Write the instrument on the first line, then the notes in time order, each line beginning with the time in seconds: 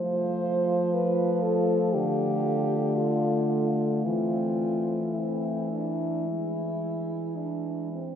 french horn
Already playing: F3 A3 F4 C5
0.94 B4
1.43 A4
1.93 D3 G4
2.98 F4
4.05 E3 C4 F4
5.14 C4 E4
5.71 D4
6.25 G#3 E4
7.37 D4
7.93 C4